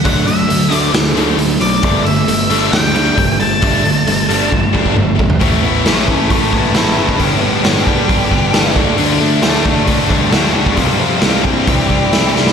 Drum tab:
HH |o-o-o-o-o-o-o-o-|o-o-o-o-o-o-o-o-|o-o-o-o---------|o---o---o---o---|
SD |--------o-------|--------o-o-----|----------------|----o-------o---|
T2 |----------------|----------------|------------o---|----------------|
FT |----------------|----------------|---------------o|----------------|
BD |o---------------|o-----------o---|o-------o-oo--o-|o-----o-o-o----o|

HH |o---o---o---o---|o---o---o---o---|o---o---o---o---|
SD |----o-------o---|----o-------o---|----o-------o-oo|
T2 |----------------|----------------|----------------|
FT |----------------|----------------|----------------|
BD |o-----o-o-o---o-|------o-o-o----o|o-----o-o-o-----|